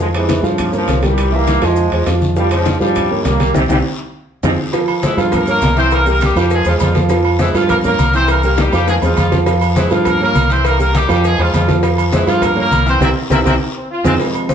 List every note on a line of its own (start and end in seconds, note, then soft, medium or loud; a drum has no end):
0.00 0.38 F2 medium
0.00 0.11 F3 medium
0.00 0.08 F3 medium
0.00 0.07 G#3 medium
0.00 0.11 F4 medium
0.00 0.12 F5 medium
0.00 long guiro medium
0.14 0.43 C3 medium
0.14 0.42 E3 medium
0.14 0.39 G#3 medium
0.14 0.39 G#4 medium
0.14 0.39 C5 medium
0.14 high conga soft
0.14 high timbale medium
0.29 high bongo medium
0.29 high conga loud
0.29 high timbale medium
0.29 short guiro medium
0.29 maracas medium
0.43 0.84 G2 medium
0.43 0.74 C#3 medium
0.43 0.68 F3 medium
0.43 0.74 F3 loud
0.43 0.68 F4 medium
0.43 0.68 F5 medium
0.43 short guiro medium
0.43 maracas soft
0.58 high bongo medium
0.58 high conga soft
0.58 low conga medium
0.58 high timbale medium
0.58 long guiro medium
0.58 maracas medium
0.73 1.02 C#3 medium
0.73 1.02 F3 medium
0.73 0.85 A#3 medium
0.73 0.85 A#4 medium
0.73 0.85 C#5 medium
0.73 high conga soft
0.73 maracas medium
0.87 1.57 C2 medium
0.87 1.00 A#3 medium
0.87 1.00 A#4 medium
0.87 1.00 C#5 medium
0.87 high bongo medium
0.87 low bongo medium
0.87 high conga medium
0.87 high timbale medium
0.87 short guiro medium
0.87 maracas medium
1.03 1.34 E3 medium
1.03 1.27 G3 medium
1.03 1.34 G3 medium
1.03 1.27 G4 medium
1.03 1.27 A#4 medium
1.03 high conga medium
1.03 high timbale medium
1.03 short guiro medium
1.03 maracas soft
1.18 high bongo medium
1.18 high conga soft
1.18 high timbale medium
1.18 long guiro medium
1.18 maracas medium
1.32 1.57 E3 medium
1.32 1.63 G3 medium
1.32 1.63 A#3 loud
1.32 1.57 E4 medium
1.32 1.57 E5 medium
1.32 high bongo soft
1.32 high conga soft
1.47 high bongo medium
1.47 high conga medium
1.47 high timbale medium
1.47 short guiro medium
1.47 maracas medium
1.62 1.90 F2 loud
1.62 1.86 F3 medium
1.62 2.08 F3 medium
1.62 2.08 G#3 loud
1.62 1.87 F4 medium
1.62 1.87 F5 medium
1.62 high timbale medium
1.62 short guiro medium
1.62 maracas soft
1.76 high bongo medium
1.76 high conga soft
1.76 long guiro medium
1.76 maracas medium
1.92 2.06 E2 medium
1.92 2.04 G#3 medium
1.92 2.05 G#4 medium
1.92 2.05 C5 medium
1.92 high bongo soft
1.92 high conga soft
1.92 high timbale medium
2.06 2.75 F2 medium
2.06 2.31 F3 medium
2.06 2.31 F4 medium
2.06 2.31 F5 medium
2.06 high bongo medium
2.06 low bongo medium
2.06 high conga soft
2.06 high timbale medium
2.06 short guiro medium
2.06 maracas medium
2.21 high bongo soft
2.21 high conga medium
2.21 short guiro medium
2.21 maracas soft
2.36 2.52 C3 medium
2.36 2.48 F3 medium
2.36 2.51 G3 loud
2.36 2.49 F4 medium
2.36 2.49 F5 medium
2.36 high bongo medium
2.36 high conga soft
2.36 long guiro medium
2.36 maracas medium
2.51 2.80 C#3 medium
2.51 2.79 F3 loud
2.51 2.75 G#3 medium
2.51 2.75 G#4 medium
2.51 2.76 C5 medium
2.51 high conga soft
2.51 high timbale medium
2.51 maracas medium
2.65 high bongo medium
2.65 high conga loud
2.65 high timbale medium
2.65 short guiro medium
2.65 maracas medium
2.80 3.22 G2 medium
2.80 3.23 C#3 medium
2.80 3.05 F3 medium
2.80 3.22 G3 loud
2.80 3.05 F4 medium
2.80 3.05 F5 medium
2.80 short guiro medium
2.80 maracas soft
2.95 high bongo medium
2.95 high conga soft
2.95 low conga medium
2.95 high timbale loud
2.95 long guiro medium
2.95 maracas medium
3.10 3.22 A#3 medium
3.10 3.23 A#4 medium
3.10 3.22 C#5 medium
3.10 high conga soft
3.25 3.52 C2 loud
3.25 3.55 G3 medium
3.25 3.37 A#3 medium
3.25 3.55 A#3 medium
3.25 3.37 A#4 medium
3.25 3.37 C#5 medium
3.25 high bongo medium
3.25 low bongo medium
3.25 high conga medium
3.25 high timbale medium
3.25 low timbale medium
3.25 short guiro medium
3.25 maracas medium
3.39 3.52 G3 medium
3.39 3.52 G4 medium
3.39 3.52 A#4 medium
3.39 high conga medium
3.39 high timbale medium
3.39 short guiro medium
3.39 maracas soft
3.54 3.66 C2 medium
3.54 3.63 C3 loud
3.54 3.63 E3 medium
3.54 3.63 G3 medium
3.54 3.64 C4 medium
3.54 3.64 E4 loud
3.54 3.64 G4 loud
3.54 high bongo loud
3.54 high conga loud
3.54 high timbale medium
3.54 long guiro loud
3.54 maracas medium
3.69 3.80 C2 loud
3.69 3.78 C3 loud
3.69 3.78 E3 medium
3.69 3.78 G3 loud
3.69 3.79 C4 medium
3.69 3.79 E4 medium
3.69 3.79 G4 loud
3.69 high bongo loud
3.69 high conga medium
3.69 high timbale loud
3.69 long guiro loud
3.69 maracas loud
4.43 4.54 F2 medium
4.43 4.51 C3 loud
4.43 4.51 F3 medium
4.43 4.51 G#3 medium
4.43 4.53 C4 medium
4.43 4.53 F4 loud
4.43 4.53 G#4 medium
4.43 high bongo medium
4.43 high conga loud
4.43 high timbale loud
4.43 long guiro loud
4.43 maracas medium
4.73 4.98 F3 medium
4.73 4.98 F4 medium
4.73 4.98 F5 medium
4.73 cowbell loud
4.73 high conga soft
4.73 low agogo medium
4.73 long guiro medium
4.73 maracas medium
4.88 high conga soft
4.88 low agogo loud
5.02 5.18 E3 medium
5.02 5.15 G#3 medium
5.02 5.18 E4 loud
5.02 5.15 G#4 medium
5.02 5.15 C5 medium
5.02 cowbell medium
5.02 high conga loud
5.02 short guiro medium
5.02 maracas medium
5.17 5.58 G2 medium
5.17 5.42 F3 medium
5.17 5.33 F3 medium
5.17 5.42 F4 medium
5.17 5.33 F4 medium
5.17 5.42 F5 medium
5.17 high conga soft
5.17 low agogo medium
5.17 short guiro medium
5.17 maracas soft
5.32 5.48 A#3 medium
5.32 5.48 A#4 loud
5.32 cowbell loud
5.32 high conga soft
5.32 low conga medium
5.32 low agogo loud
5.32 long guiro medium
5.32 maracas medium
5.47 5.72 A#3 medium
5.47 5.76 A#3 medium
5.47 5.72 A#4 medium
5.47 5.76 A#4 loud
5.47 5.72 C#5 medium
5.47 high conga soft
5.47 maracas medium
5.61 6.30 C2 loud
5.61 cowbell medium
5.61 high conga medium
5.61 low timbale medium
5.61 low agogo medium
5.61 short guiro medium
5.61 maracas medium
5.76 6.01 E3 medium
5.76 5.91 C4 medium
5.76 6.01 E4 medium
5.76 5.92 C5 loud
5.76 6.02 E5 medium
5.76 cowbell medium
5.76 high conga soft
5.76 short guiro medium
5.76 maracas soft
5.91 6.07 A#3 medium
5.91 6.07 A#4 loud
5.91 cowbell loud
5.91 high conga soft
5.91 low agogo loud
5.91 long guiro medium
5.91 maracas medium
6.06 6.30 G3 medium
6.06 6.22 A#3 medium
6.06 6.30 G4 medium
6.06 6.31 A#4 medium
6.06 6.22 A#4 loud
6.06 high conga soft
6.06 maracas medium
6.21 6.37 G3 medium
6.21 6.37 G4 loud
6.21 cowbell medium
6.21 high conga medium
6.21 low agogo medium
6.21 short guiro medium
6.21 maracas medium
6.35 6.63 F2 loud
6.35 6.61 F3 loud
6.35 6.51 G3 medium
6.35 6.61 F4 medium
6.35 6.51 G4 medium
6.35 6.61 F5 loud
6.35 high conga soft
6.35 low agogo loud
6.35 short guiro medium
6.35 maracas soft
6.50 6.66 G#3 medium
6.50 6.66 G#4 loud
6.50 cowbell loud
6.50 high conga soft
6.50 long guiro medium
6.50 maracas medium
6.65 6.79 E2 medium
6.65 6.73 F3 medium
6.65 6.90 G#3 medium
6.65 6.73 F4 medium
6.65 6.90 G#4 medium
6.65 6.90 C5 medium
6.65 high conga soft
6.65 low agogo medium
6.65 maracas medium
6.80 7.49 F2 loud
6.80 7.02 F3 medium
6.80 7.02 F4 medium
6.80 cowbell medium
6.80 high conga medium
6.80 low timbale medium
6.80 low agogo loud
6.80 short guiro medium
6.80 maracas medium
6.94 7.07 F3 medium
6.94 7.08 F4 medium
6.94 7.08 F5 medium
6.94 cowbell medium
6.94 high conga medium
6.94 short guiro medium
6.94 maracas soft
7.09 7.34 F3 medium
7.09 7.35 F4 loud
7.09 7.35 F5 medium
7.09 cowbell loud
7.09 high conga soft
7.09 low agogo medium
7.09 long guiro medium
7.09 maracas medium
7.25 high conga soft
7.25 low agogo loud
7.39 7.54 E3 medium
7.39 7.52 G#3 medium
7.39 7.54 E4 medium
7.39 7.52 G#4 medium
7.39 7.52 C5 medium
7.39 cowbell medium
7.39 high conga loud
7.39 short guiro medium
7.39 maracas medium
7.54 7.95 G2 loud
7.54 7.79 F3 loud
7.54 7.70 F3 medium
7.54 7.79 F4 loud
7.54 7.70 F4 medium
7.54 7.79 F5 medium
7.54 high conga soft
7.54 low agogo medium
7.54 short guiro medium
7.54 maracas soft
7.69 7.76 A#3 medium
7.69 7.76 A#4 loud
7.69 cowbell loud
7.69 high conga soft
7.69 low conga medium
7.69 low agogo loud
7.69 long guiro medium
7.69 maracas medium
7.84 8.08 A#3 medium
7.84 8.12 A#3 medium
7.84 8.08 A#4 medium
7.84 8.12 A#4 loud
7.84 8.09 C#5 medium
7.84 high conga soft
7.84 low conga medium
7.84 maracas medium
7.99 8.67 C2 loud
7.99 cowbell medium
7.99 high conga medium
7.99 low agogo medium
7.99 short guiro medium
7.99 maracas medium
8.13 8.38 E3 medium
8.13 8.28 C4 medium
8.13 8.38 E4 medium
8.13 8.28 C5 loud
8.13 8.38 E5 medium
8.13 cowbell medium
8.13 high conga soft
8.13 short guiro medium
8.13 maracas soft
8.28 8.44 A#3 medium
8.28 8.43 A#4 loud
8.28 cowbell loud
8.28 high conga soft
8.28 low agogo loud
8.28 long guiro medium
8.28 maracas medium
8.43 8.67 G3 medium
8.43 8.58 A#3 medium
8.43 8.68 G4 medium
8.43 8.68 A#4 medium
8.43 8.57 A#4 medium
8.43 high conga soft
8.43 maracas medium
8.57 8.74 G3 medium
8.57 8.73 G4 medium
8.57 cowbell medium
8.57 high bongo medium
8.57 high conga loud
8.57 low agogo medium
8.57 short guiro medium
8.57 maracas medium
8.72 9.00 F2 loud
8.72 8.97 F3 medium
8.72 8.88 G3 medium
8.72 8.97 F4 loud
8.72 8.87 G4 medium
8.72 8.97 F5 medium
8.72 high conga soft
8.72 low agogo loud
8.72 short guiro medium
8.72 maracas soft
8.88 8.95 G#3 medium
8.88 8.95 G#4 loud
8.88 cowbell loud
8.88 high bongo medium
8.88 high conga soft
8.88 long guiro medium
8.88 maracas medium
9.02 9.16 E2 medium
9.02 9.17 F3 medium
9.02 9.26 G#3 medium
9.02 9.16 F4 medium
9.02 9.27 G#4 medium
9.02 9.27 C5 medium
9.02 low bongo medium
9.02 high conga soft
9.02 low agogo medium
9.02 maracas medium
9.17 9.85 F2 loud
9.17 9.39 F3 medium
9.17 9.38 F4 medium
9.17 cowbell medium
9.17 high conga medium
9.17 low agogo loud
9.17 short guiro medium
9.17 maracas medium
9.32 9.44 F3 medium
9.32 9.44 F4 medium
9.32 9.44 F5 medium
9.32 cowbell medium
9.32 low bongo medium
9.32 high conga loud
9.32 short guiro medium
9.32 maracas soft
9.46 9.71 F3 medium
9.46 9.71 F4 medium
9.46 9.71 F5 medium
9.46 cowbell loud
9.46 high conga soft
9.46 low agogo medium
9.46 long guiro medium
9.46 maracas medium
9.61 high conga soft
9.61 low agogo loud
9.61 maracas medium
9.76 9.91 E3 medium
9.76 9.88 G#3 medium
9.76 9.90 E4 medium
9.76 9.88 G#4 medium
9.76 9.89 C5 medium
9.76 cowbell medium
9.76 high conga loud
9.76 short guiro medium
9.76 maracas medium
9.90 10.32 G2 loud
9.90 10.15 F3 loud
9.90 10.06 F3 medium
9.90 10.15 F4 loud
9.90 10.05 F4 medium
9.90 10.15 F5 loud
9.90 high conga soft
9.90 low agogo medium
9.90 short guiro medium
9.90 maracas soft
10.05 10.21 A#3 medium
10.05 10.21 A#4 loud
10.05 cowbell loud
10.05 high conga soft
10.05 low conga medium
10.05 low agogo loud
10.05 long guiro medium
10.05 maracas medium
10.20 10.45 A#3 medium
10.20 10.49 A#3 medium
10.20 10.45 A#4 medium
10.20 10.49 A#4 loud
10.20 10.45 C#5 medium
10.20 high conga soft
10.35 11.03 C2 loud
10.35 cowbell medium
10.35 high conga medium
10.35 low agogo medium
10.35 short guiro medium
10.35 maracas medium
10.49 10.74 E3 medium
10.49 10.66 C4 medium
10.49 10.74 E4 medium
10.49 10.65 C5 loud
10.49 10.74 E5 loud
10.49 cowbell medium
10.49 high conga soft
10.49 short guiro medium
10.49 maracas soft
10.65 10.80 A#3 medium
10.65 10.79 A#4 loud
10.65 cowbell loud
10.65 high conga soft
10.65 low agogo loud
10.65 long guiro medium
10.65 maracas medium
10.79 11.03 G3 medium
10.79 10.94 A#3 medium
10.79 11.04 G4 medium
10.79 11.04 A#4 medium
10.79 10.93 A#4 loud
10.79 high conga soft
10.79 maracas medium
10.95 11.09 G3 medium
10.95 11.09 G4 loud
10.95 cowbell medium
10.95 high conga loud
10.95 low agogo medium
10.95 short guiro medium
10.95 maracas medium
11.09 11.36 F2 loud
11.09 11.33 F3 medium
11.09 11.24 G3 medium
11.09 11.33 F4 loud
11.09 11.24 G4 loud
11.09 11.33 F5 medium
11.09 high conga soft
11.09 low agogo loud
11.09 short guiro medium
11.09 maracas soft
11.24 11.39 G#3 medium
11.24 11.39 G#4 loud
11.24 cowbell medium
11.24 high conga soft
11.24 long guiro medium
11.24 maracas medium
11.38 11.52 E2 medium
11.38 11.54 F3 medium
11.38 11.63 G#3 medium
11.38 11.54 F4 medium
11.38 11.63 G#4 medium
11.38 11.64 C5 medium
11.38 high conga soft
11.38 low agogo medium
11.53 12.22 F2 medium
11.53 11.75 F3 medium
11.53 11.75 F4 medium
11.53 cowbell medium
11.53 high conga medium
11.53 low timbale medium
11.53 low agogo loud
11.53 short guiro medium
11.53 maracas medium
11.68 11.80 F3 medium
11.68 11.81 F4 medium
11.68 11.81 F5 medium
11.68 cowbell medium
11.68 high conga medium
11.68 short guiro medium
11.68 maracas soft
11.83 12.07 F3 medium
11.83 12.07 F4 medium
11.83 12.08 F5 medium
11.83 cowbell loud
11.83 high conga soft
11.83 low agogo medium
11.83 long guiro medium
11.83 maracas medium
11.98 high conga soft
11.98 low agogo loud
11.98 maracas medium
12.13 12.27 E3 medium
12.13 12.25 G#3 medium
12.13 12.27 E4 medium
12.13 12.25 G#4 medium
12.13 12.25 C5 medium
12.13 cowbell medium
12.13 high conga loud
12.13 short guiro medium
12.13 maracas medium
12.27 12.68 G2 loud
12.27 12.51 F3 loud
12.27 12.43 F3 medium
12.27 12.51 F4 medium
12.27 12.43 F4 loud
12.27 12.52 F5 medium
12.27 high conga soft
12.27 low agogo medium
12.27 short guiro medium
12.27 maracas soft
12.42 12.58 A#3 medium
12.42 12.58 A#4 loud
12.42 cowbell loud
12.42 high conga soft
12.42 low conga medium
12.42 low agogo loud
12.42 long guiro medium
12.42 maracas medium
12.56 12.81 A#3 medium
12.56 12.85 A#3 medium
12.56 12.81 A#4 medium
12.56 12.86 A#4 loud
12.56 12.81 C#5 medium
12.56 high conga soft
12.71 12.99 C2 medium
12.71 cowbell medium
12.71 high conga medium
12.71 low agogo medium
12.71 short guiro medium
12.71 maracas medium
12.85 12.98 E3 medium
12.85 13.01 C4 medium
12.85 12.98 E4 medium
12.85 13.01 C5 loud
12.85 12.98 E5 loud
12.85 cowbell medium
12.85 high conga soft
12.85 short guiro medium
12.85 maracas soft
13.00 13.12 C2 loud
13.00 13.09 A#3 medium
13.00 13.10 C4 loud
13.00 13.09 C4 loud
13.00 13.10 E4 loud
13.00 13.09 E4 loud
13.00 13.10 G4 loud
13.00 cowbell loud
13.00 high conga loud
13.00 high timbale medium
13.00 long guiro loud
13.00 maracas medium
13.30 13.41 C2 loud
13.30 13.39 A#3 medium
13.30 13.40 C4 loud
13.30 13.39 C4 medium
13.30 13.40 E4 loud
13.30 13.39 E4 loud
13.30 13.40 G4 loud
13.30 cowbell loud
13.30 high conga loud
13.30 high timbale loud
13.30 long guiro loud
13.30 maracas loud
13.44 13.56 C2 medium
13.44 13.53 A#3 loud
13.44 13.54 C4 loud
13.44 13.53 C4 loud
13.44 13.54 E4 loud
13.44 13.53 E4 loud
13.44 13.54 G4 loud
13.44 cowbell medium
13.44 high conga medium
13.44 high timbale medium
13.44 long guiro loud
13.44 maracas loud
13.75 13.89 C4 medium
13.90 14.17 F4 loud
14.04 14.15 F2 loud
14.04 14.13 G#3 loud
14.04 14.14 C4 loud
14.04 14.13 C4 loud
14.04 14.14 F4 loud
14.04 14.13 F4 loud
14.04 14.14 G#4 medium
14.04 cowbell medium
14.04 high conga loud
14.04 high timbale loud
14.04 long guiro loud
14.04 maracas loud
14.19 14.54 C3 medium
14.19 14.54 F3 soft
14.19 14.54 G#3 medium
14.19 cowbell loud
14.19 high conga soft
14.19 low agogo medium
14.19 maracas medium
14.35 high conga soft
14.35 low agogo loud
14.35 maracas medium
14.49 14.54 C4 medium
14.49 14.54 F4 medium
14.49 14.54 G#4 medium
14.49 14.54 C5 medium
14.49 cowbell medium
14.49 high conga loud
14.49 maracas medium